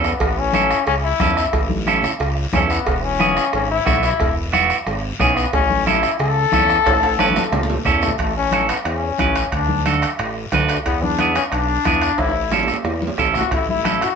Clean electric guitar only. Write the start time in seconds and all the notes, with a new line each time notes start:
Already playing: C#4 E4 A4
0.54 C#4 E4 A4
1.20 C#4 E4 A4
1.87 C#4 E4 A4
2.54 C#4 E4 A4
3.19 B3 E4 G#4
3.85 B3 E4 F#4
4.53 B3 E4 F#4
5.19 B3 E4 G#4
5.86 C#4 E4 A4
6.53 C#4 E4 A4
7.19 C#4 E4 B4
7.85 C#4 E4 A4
8.52 C#4 E4 A4
9.19 C#4 E4 B4
9.86 D4 F#4 A4
10.53 D4 F#4 B4
11.19 B3 E4 G#4
11.86 B3 E4 G#4
12.52 C#4 E4 A4
13.18 C#4 E4 A4
13.84 C#4 E4 A4